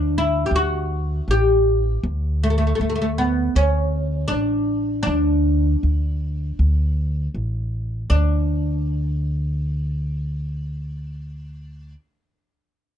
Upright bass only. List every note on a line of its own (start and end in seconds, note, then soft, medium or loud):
0.00 0.44 D2 medium
0.51 1.20 D2 medium
1.28 1.96 A1 medium
2.03 2.72 D2 loud
2.80 3.48 D2 medium
3.55 4.23 D2 medium
4.31 4.99 A1 medium
5.07 5.75 D2 loud
5.83 6.51 D2 medium
6.59 7.27 D2 medium
7.35 8.03 A1 medium
8.10 11.94 D2 medium